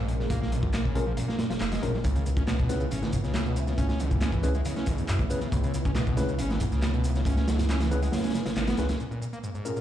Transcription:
Already playing: A#1 C#3 G#3 A#3
0.08 A#2, closed hi-hat
0.20 A#2, snare
0.30 A#1 A#3, kick, closed hi-hat, high conga
0.41 A#3, snare
0.52 A#2, closed hi-hat
0.63 A#1, kick, high conga
0.73 A#3, snare, clap, closed hi-hat
0.84 C#3, kick
0.95 A#2 C#4 F4 G#4 A#4, closed hi-hat, high conga
1.07 F3
1.17 A#2, closed hi-hat, low conga
1.28 A#3, snare
1.38 A#2, snare, closed hi-hat, high conga
1.50 F1 F3, snare, closed hi-hat
1.60 F1 A#3, snare, clap, closed hi-hat
1.71 G#3, snare, closed hi-hat, high conga
1.82 A#1 A#2 C#4 F4 G#4 A#4, closed hi-hat
1.93 A#3, snare
2.04 C#2 C#3 B3 E4, kick, closed hi-hat, high conga, shaker
2.15 C#3, closed hi-hat, shaker
2.26 C#3, closed hi-hat, shaker
2.37 C#4, kick, high conga, shaker
2.47 B2, snare, clap, closed hi-hat, shaker
2.59 B2, kick, shaker
2.69 C#3 C#4 E4 G#4 B4, snare, closed hi-hat, high conga, shaker
2.80 C#3, shaker
2.91 G#1 C#4, closed hi-hat, low conga, shaker
3.02 C#3, snare, shaker
3.13 C#2 C#3, kick, closed hi-hat, high conga, shaker
3.24 C#3, snare, shaker
3.34 C#3, snare, clap, closed hi-hat, shaker
3.46 B2, high conga, shaker
3.56 C#3, closed hi-hat, shaker
3.67 C#3, snare, shaker
3.78 C#2 C#4, kick, closed hi-hat, high conga, shaker
3.89 C#4, snare, shaker
4.00 C#3, closed hi-hat, shaker
4.11 C#2, kick, high conga, shaker
4.21 C#4, snare, clap, closed hi-hat, shaker
4.32 E3, kick, shaker
4.43 C#3 C#4 E4 G#4 B4, closed hi-hat, high conga, shaker
4.55 G#3, shaker
4.65 C#3, closed hi-hat, low conga, shaker
4.76 C#4, snare, shaker
4.86 C#3, kick, closed hi-hat, high conga, shaker
4.98 C#2 F#2, closed hi-hat, shaker
5.08 F#2 C#3, clap, closed hi-hat, shaker
5.19 E3, kick, high conga, shaker
5.30 C#3 C#4 E4 G#4 B4, closed hi-hat, shaker
5.40 C#3, snare, shaker
5.52 C#2 C#3, kick, closed hi-hat, high conga, shaker
5.63 C#3, closed hi-hat, shaker
5.74 C#3, closed hi-hat, shaker
5.84 C#4, kick, high conga, shaker
5.95 B2, snare, clap, closed hi-hat, shaker
6.07 B2, kick, shaker
6.17 C#3 C#4 E4 G#4 B4, snare, closed hi-hat, high conga, shaker
6.29 C#3, shaker
6.38 G#1 C#4, closed hi-hat, low conga, shaker
6.50 C#3, snare, shaker
6.60 C#2 C#3, kick, closed hi-hat, high conga, shaker
6.72 C#3, snare, shaker
6.82 C#3, snare, clap, closed hi-hat, shaker
6.94 B2, high conga, shaker
7.04 C#3, closed hi-hat, shaker
7.15 C#3, snare, shaker
7.25 C#2 C#4, kick, closed hi-hat, high conga, shaker
7.37 C#4, snare, shaker
7.48 C#3, snare, closed hi-hat, shaker
7.58 C#2, snare, closed hi-hat, high conga, shaker
7.69 C#4, snare, clap, closed hi-hat, shaker
7.80 E3, snare, closed hi-hat, shaker
7.91 C#3 C#4 E4 G#4 B4, closed hi-hat, high conga, shaker
8.02 G#3, closed hi-hat, shaker
8.12 C#3, snare, closed hi-hat, low conga, shaker
8.18 snare, closed hi-hat
8.24 C#4, snare, closed hi-hat, shaker
8.30 snare, closed hi-hat
8.34 C#3, snare, closed hi-hat, high conga, shaker
8.46 G#1 C#3, snare, closed hi-hat, shaker
8.56 G#1 C#3, snare, clap, closed hi-hat, shaker
8.67 B3, snare, closed hi-hat, high conga, shaker
8.77 C#2 D#3 C#4 E4 G#4 B4, snare, closed hi-hat, shaker
8.89 C#4, snare, closed hi-hat, shaker
9.00 A#2 G#3 C#4, shaker
9.11 A#2, shaker
9.21 A#2, shaker
9.33 A#3, shaker
9.44 G#2, shaker
9.54 G#2, shaker
9.65 A#2 C#4 F4 G#4 A#4, shaker
9.76 A#2, shaker

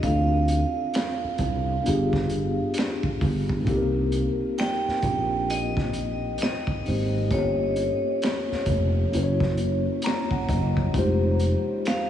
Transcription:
0.01 D2 C4 D4 F5, kick, closed hi-hat
0.05 F4 A4
0.48 closed hi-hat
0.94 finger snap, snare, closed hi-hat
1.24 muted fretless electric bass stroke
1.38 C2, kick, closed hi-hat
1.82 B3 D4 F4, closed hi-hat
1.87 G1 G4 G#4
2.13 kick, snare
2.29 closed hi-hat
2.74 closed hi-hat
2.78 finger snap, snare
3.03 muted fretless electric bass stroke, kick
3.21 G1, kick, open hi-hat
3.49 kick
3.65 C2 A#3 C4 D#4, kick, closed hi-hat
3.69 G4 A4
3.77 A#4
4.12 closed hi-hat
4.58 G5, finger snap, snare, closed hi-hat
4.88 muted fretless electric bass stroke, snare
5.02 A#1, kick, closed hi-hat
5.50 D#5, closed hi-hat
5.77 kick, snare
5.93 closed hi-hat
6.38 closed hi-hat
6.42 D#5, finger snap, snare
6.67 kick
6.85 G#1 A#3 C4 D#4 G4 C5, open hi-hat
7.29 G1 A#3 C#4 F4 C#5, kick, closed hi-hat
7.33 G4 A4
7.76 closed hi-hat
8.22 finger snap, snare, closed hi-hat
8.52 muted fretless electric bass stroke, snare
8.66 F1, kick, closed hi-hat
9.11 A#3 C#4 E4, closed hi-hat
9.15 F#1 F#4 B4
9.23 C#5
9.40 kick, snare
9.57 closed hi-hat
10.02 A#5, closed hi-hat
10.06 finger snap, snare
10.31 F#5, kick
10.49 F#1 D#5, kick, closed hi-hat
10.77 kick
10.92 F1 G3 D#4 F4, kick, closed hi-hat
10.97 G#3 G4 C5
11.39 closed hi-hat
11.85 F5, finger snap, snare, closed hi-hat

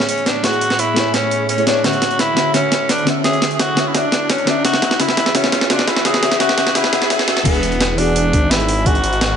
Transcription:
Already playing: A2 A3 B3 E4 G#4 C#5, riser
0.09 C#4, closed hi-hat
0.18 closed hi-hat
0.26 D4, snare, closed hi-hat
0.42 A3 E4 F#4 G#4 C#5, snare, closed hi-hat
0.53 closed hi-hat
0.61 closed hi-hat
0.70 snare, closed hi-hat
0.79 E4, closed hi-hat
0.93 A3 E4 G#4, snare, closed hi-hat
0.99 C#5
1.14 C#4, snare, closed hi-hat
1.31 closed hi-hat
1.49 C#4, closed hi-hat
1.57 A3 E4 G#4 C#5, closed hi-hat
1.66 A3 D4 E4 G#4 C#5, snare, closed hi-hat
1.83 D3 C#4 E4 F#4 A4 E5, snare, closed hi-hat
1.93 closed hi-hat
2.02 snare, closed hi-hat
2.11 closed hi-hat
2.19 E4, snare, closed hi-hat
2.34 D3 C#4 F#4, snare, closed hi-hat
2.39 E5
2.53 D3 C#4 F#4 E5, snare, closed hi-hat
2.72 snare, closed hi-hat
2.89 D4, snare, closed hi-hat
2.98 closed hi-hat
3.04 D3 C#4 F#4, snare, closed hi-hat
3.10 E5
3.23 D3 C#4 F#4 G#4 E5, snare, closed hi-hat
3.33 closed hi-hat
3.42 snare, closed hi-hat
3.51 G#4, closed hi-hat
3.59 F#4, snare, closed hi-hat
3.74 D3 C#4 F#4, snare, closed hi-hat
3.80 E5
3.88 E4
3.93 D3 C#4 D4 F#4 E5, snare, closed hi-hat
4.12 snare, closed hi-hat
4.30 C#4, snare, closed hi-hat
4.38 closed hi-hat
4.44 D3 C#4 D4 F#4, snare, closed hi-hat
4.50 E5
4.64 C#3 E3 B3 C#4 F#4 G#4 E5, snare, closed hi-hat
4.74 snare, closed hi-hat
4.82 snare, closed hi-hat
4.91 snare, closed hi-hat
4.99 C#3 C#4 E4 F#4 E5, snare, closed hi-hat
5.09 snare
5.17 snare, closed hi-hat
5.26 snare
5.34 C#3 C#4 F#4 E5, snare, closed hi-hat
5.44 snare
5.52 snare, closed hi-hat
5.61 snare
5.69 C#3 C#4 D4 F#4 E5, snare, closed hi-hat
5.79 snare, closed hi-hat
5.88 E4, snare, closed hi-hat
5.96 snare
6.04 C#3 C#4 F#4 G#4 E5, snare, closed hi-hat
6.14 snare, closed hi-hat
6.22 C#3 C#4 F#4 E5, snare, closed hi-hat
6.31 snare, closed hi-hat
6.39 C#3 C#4 F#4 E5, snare, closed hi-hat
6.49 snare
6.57 C#3 C#4 F#4 E5, snare, closed hi-hat
6.67 snare
6.74 C#3 C#4 E4 F#4 E5, snare, closed hi-hat, swell
6.84 snare
6.91 C#3 C#4 F#4 E5, snare, closed hi-hat
7.02 snare
7.09 C#3 C#4 F#4 E5, snare, closed hi-hat
7.19 snare, closed hi-hat
7.26 C#3 C#4 F#4 E5, snare, closed hi-hat
7.37 snare
7.44 E1 E3 B3 D4 F#4 G#4, kick, closed hi-hat, crash
7.54 closed hi-hat
7.63 closed hi-hat
7.72 closed hi-hat
7.81 snare, closed hi-hat
7.95 E3 D4 F#4, open hi-hat
8.01 G#4
8.16 closed hi-hat
8.33 G#1, kick, closed hi-hat
8.43 G#1
8.51 E4, snare, closed hi-hat
8.60 closed hi-hat
8.69 open hi-hat
8.85 E3 D4 F#4 G#4, kick, closed hi-hat
8.95 closed hi-hat
9.04 closed hi-hat
9.13 closed hi-hat
9.21 snare, closed hi-hat

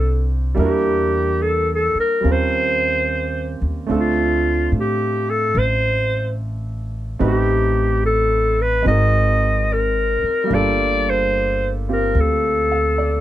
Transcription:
Already playing: C2 G3 C4 D4 F4 G4 A4
0.55 E2 G3 A#3 D4 E4
0.59 G4 A#4
1.43 A4
1.75 A4
1.95 muted upright bass stroke
2.00 A#4
2.21 D#2 G3 C4 C#4
2.25 F4 A#4
2.32 C5
3.61 D#2
3.87 D2 A3 C4 D4 F4
3.91 A4
3.98 F4
4.72 A2
4.80 G4
5.30 A4
5.55 A1 C5
7.19 A1 A3 C4 D#4 G4 B4
7.25 G4
8.06 A4
8.62 B4
8.83 G#1 G#3 C4 D#4 F#4
8.88 A#4 D#5
9.73 A#4
10.23 muted upright bass stroke
10.44 G3 A#3
10.50 G1 D4 F4
10.54 A4 D5
11.10 C5
11.89 C4 F4 G4 A#4
12.15 D2
12.20 A4
12.72 F5
12.98 D5

